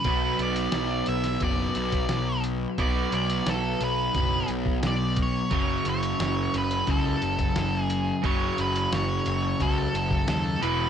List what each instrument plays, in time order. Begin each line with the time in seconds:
Already playing: lead electric guitar B4
0.04 picked electric bass B1, overdriven electric guitar B2 F#3, kick, closed hi-hat
0.09 overdriven electric guitar B3
0.39 picked electric bass B1, lead electric guitar D5, closed hi-hat
0.56 closed hi-hat
0.72 picked electric bass B1, snare, closed hi-hat
1.06 picked electric bass B1, lead electric guitar E5, closed hi-hat
1.24 snare, closed hi-hat
1.40 picked electric bass F#1, overdriven electric guitar B2 F#3, lead electric guitar D5, kick, closed hi-hat
1.45 overdriven electric guitar B3
1.75 picked electric bass B1, closed hi-hat
1.92 kick, closed hi-hat
2.09 picked electric bass B1, snare, closed hi-hat
2.44 closed hi-hat
2.78 picked electric bass B1, overdriven electric guitar B2 F#3 B3, lead electric guitar D5, kick, closed hi-hat
3.12 picked electric bass B1, lead electric guitar D5, closed hi-hat
3.30 closed hi-hat
3.46 picked electric bass B1, lead electric guitar A4, snare, closed hi-hat
3.81 picked electric bass B1, lead electric guitar B4, closed hi-hat
4.14 picked electric bass F#1, overdriven electric guitar B2 F#3, kick, closed hi-hat
4.19 overdriven electric guitar B3
4.48 picked electric bass B1, closed hi-hat
4.66 kick
4.83 picked electric bass B1, snare, closed hi-hat
4.87 lead electric guitar D5
5.16 kick, closed hi-hat
5.23 lead electric guitar C#5
5.50 picked electric bass F#1, overdriven electric guitar F#2 C#3 F#3, kick, closed hi-hat
5.85 picked electric bass F#1, closed hi-hat
5.89 lead electric guitar C#5
6.03 closed hi-hat
6.20 picked electric bass F#1, snare, closed hi-hat
6.54 picked electric bass F#1, lead electric guitar B4, closed hi-hat
6.71 closed hi-hat
6.86 picked electric bass C#2, overdriven electric guitar F#2 C#3 F#3, lead electric guitar A4, kick, closed hi-hat
7.22 picked electric bass F#1, closed hi-hat
7.39 kick, closed hi-hat
7.56 picked electric bass F#1, snare, closed hi-hat
7.80 lead electric guitar G#4
7.90 closed hi-hat
8.24 picked electric bass F#1, overdriven electric guitar F#2 C#3 F#3, lead electric guitar C#5, kick, closed hi-hat
8.58 picked electric bass F#1, lead electric guitar B4, closed hi-hat
8.76 closed hi-hat
8.92 picked electric bass F#1, lead electric guitar C#5, snare, closed hi-hat
9.26 picked electric bass F#1, closed hi-hat
9.60 picked electric bass C#2, overdriven electric guitar F#2 C#3 F#3, lead electric guitar A4, kick, closed hi-hat
9.94 picked electric bass F#1, closed hi-hat
10.11 kick
10.28 picked electric bass D#2, lead electric guitar A4, snare, closed hi-hat
10.60 picked electric bass E1, overdriven electric guitar E2 B2 E3, lead electric guitar B4, closed hi-hat